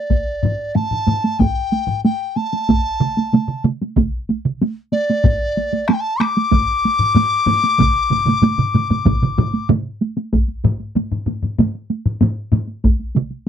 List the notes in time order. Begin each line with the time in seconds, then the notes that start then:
Already playing: D5
0.10 taiko, taiko high
0.43 taiko low-mid, taiko high
0.75 A5, taiko low-mid, taiko high
0.91 taiko low-mid
1.07 taiko low-mid, taiko high
1.24 taiko high
1.39 G5, taiko, taiko low-mid, taiko high
1.72 taiko high
1.87 taiko low-mid
2.04 G5, taiko high
2.36 A5, taiko high
2.53 taiko high
2.69 taiko, taiko high
3.00 taiko mid, taiko high
3.17 taiko high
3.33 taiko mid, taiko high
3.48 taiko mid
3.64 taiko mid, taiko high
3.81 taiko high
3.96 taiko, taiko mid, taiko high
4.29 taiko high
4.45 taiko mid
4.62 taiko high
4.92 D5, taiko high
5.10 taiko high
5.24 taiko, taiko low-mid, taiko high
5.57 taiko high
5.73 taiko high
5.88 A5, taiko rim, taiko high
5.94 G5
6.00 A5
6.19 D6, taiko rim, taiko high
6.37 taiko high
6.52 taiko, taiko low-mid, taiko high
6.85 taiko high
6.99 taiko low-mid
7.16 taiko low-mid, taiko high
7.46 taiko low-mid, taiko high
7.64 taiko high
7.78 taiko, taiko low-mid, taiko mid, taiko high
8.10 taiko low-mid, taiko mid, taiko high
8.25 taiko low-mid, taiko mid, taiko high
8.42 taiko low-mid, taiko mid, taiko high
8.58 taiko low-mid, taiko mid
8.74 taiko low-mid, taiko mid, taiko high
8.90 taiko low-mid, taiko mid, taiko high
9.05 taiko, taiko low-mid, taiko mid, taiko high
9.22 taiko low-mid, taiko mid
9.38 taiko low-mid, taiko mid, taiko high
9.54 taiko high
9.69 taiko low-mid, taiko mid, taiko high
10.02 taiko high
10.17 taiko high
10.33 taiko, taiko high
10.48 taiko high
10.64 taiko low-mid, taiko high
10.80 taiko high
10.96 taiko low-mid, taiko high
11.12 taiko low-mid, taiko high
11.26 taiko low-mid, taiko high
11.43 taiko low-mid, taiko high
11.59 taiko low-mid, taiko high
11.75 taiko high
11.90 taiko high
12.06 taiko low-mid, taiko high
12.21 taiko low-mid, taiko high
12.52 taiko low-mid, taiko high
12.67 taiko high
12.84 taiko, taiko high
12.99 taiko high
13.15 taiko mid, taiko high
13.31 taiko high